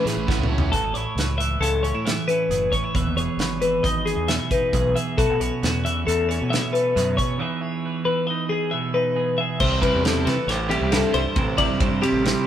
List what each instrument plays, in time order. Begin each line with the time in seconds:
Already playing: clean electric guitar A2 E3 C#4 E4, overdriven electric guitar A2 E3
0.04 fingered electric bass A2, overdriven electric guitar A3 C#4 E4, clean electric guitar G#4 B4, snare, closed hi-hat
0.17 fingered electric bass A1
0.27 clean electric guitar A2 F#4 B4, overdriven electric guitar A2 E3 A3 C#4 E4, kick, snare
0.39 fingered electric bass C#2
0.43 mid tom
0.48 overdriven electric guitar A3 C#4 E4, clean electric guitar C#4
0.58 floor tom
0.72 fingered electric bass A1, clean electric guitar A2 F#4 A4, kick, closed hi-hat
0.83 fingered electric bass G#1, clean electric guitar G#4
0.93 fingered electric bass A1, clean electric guitar C#5, closed hi-hat
0.97 clean electric guitar E4
1.15 fingered electric bass C#2, clean electric guitar B4, snare, closed hi-hat
1.38 clean electric guitar E3 E5, closed hi-hat
1.60 fingered electric bass C#2, clean electric guitar C#4 A4, closed hi-hat
1.83 clean electric guitar C#4 C#5, closed hi-hat
1.94 fingered electric bass A2, clean electric guitar E4
2.05 clean electric guitar E3 E5, snare, closed hi-hat
2.28 clean electric guitar C#4 B4, closed hi-hat
2.49 fingered electric bass F#1, clean electric guitar A2 G#4, closed hi-hat
2.72 clean electric guitar C#4 C#5, kick, closed hi-hat
2.84 clean electric guitar E4
2.95 fingered electric bass E1, clean electric guitar E2 B4 E5, kick, closed hi-hat
3.06 fingered electric bass D#2
3.16 fingered electric bass E1, clean electric guitar G#4 C#5, closed hi-hat
3.37 fingered electric bass G#1, clean electric guitar B4, snare, closed hi-hat
3.62 clean electric guitar E3 B4, closed hi-hat
3.83 fingered electric bass G#1, clean electric guitar D#4 D#5, kick, closed hi-hat
4.06 clean electric guitar G#4, closed hi-hat
4.16 fingered electric bass E2
4.28 clean electric guitar B2 E5, snare, closed hi-hat
4.51 clean electric guitar D#4 B4, kick, closed hi-hat
4.73 fingered electric bass B1, clean electric guitar E2 G#4, kick, closed hi-hat
4.96 clean electric guitar G#4 E5, closed hi-hat
5.18 fingered electric bass B1, clean electric guitar B2 F#4 A4, kick, closed hi-hat
5.29 fingered electric bass A1
5.40 fingered electric bass B1, clean electric guitar C#4 C#5, closed hi-hat
5.63 fingered electric bass E2, clean electric guitar F#4, snare, closed hi-hat
5.85 clean electric guitar E3 E5, closed hi-hat
6.07 fingered electric bass E2, clean electric guitar A3 A4, closed hi-hat
6.29 clean electric guitar C#4 C#5, closed hi-hat
6.41 fingered electric bass B2
6.50 clean electric guitar B2 E5, snare, closed hi-hat
6.73 clean electric guitar A3 B4, closed hi-hat
6.96 fingered electric bass F#2, clean electric guitar B2 G#4, snare, closed hi-hat
7.17 clean electric guitar C#4 C#5, kick, closed hi-hat
7.38 clean electric guitar E2 E3 D#4 G#4 B4 E5
7.61 clean electric guitar G#4 C#5
7.86 clean electric guitar B4
8.05 clean electric guitar E3 B4
8.27 clean electric guitar D#4 D#5
8.49 clean electric guitar G#4
8.71 clean electric guitar B2 E5
8.94 clean electric guitar D#4 B4
9.16 clean electric guitar E2 G#4
9.38 clean electric guitar G#4 E5
9.60 fingered electric bass C2, clean electric guitar C3 E4 C5, kick, crash
9.82 overdriven electric guitar C3 G3 C4 E4, clean electric guitar B4, kick, ride
9.94 fingered electric bass E2
10.02 overdriven electric guitar C3 G3 C4 E4, clean electric guitar A4, snare, ride
10.25 fingered electric bass C3, clean electric guitar E3 A3 B4, snare, ride
10.48 fingered electric bass A1, clean electric guitar G4 C5, snare, ride
10.69 overdriven electric guitar C3 G3 C4 E4, clean electric guitar G4, ride
10.81 fingered electric bass C2
10.91 clean electric guitar G2 E4 A4, overdriven electric guitar C3 G3 C4 E4, snare, ride
11.14 fingered electric bass C2, clean electric guitar A3 C5, ride
11.36 fingered electric bass A1, clean electric guitar C3 E4, kick, ride
11.57 overdriven electric guitar C3 G3 C4 E4, clean electric guitar D5, kick, ride
11.69 fingered electric bass G2
11.80 fingered electric bass G2, clean electric guitar C3 E4 C5, kick, ride
12.02 overdriven electric guitar C3 G3 C4 E4, clean electric guitar G4, ride
12.12 fingered electric bass A1
12.24 overdriven electric guitar C3 G3 C4 E4, snare, ride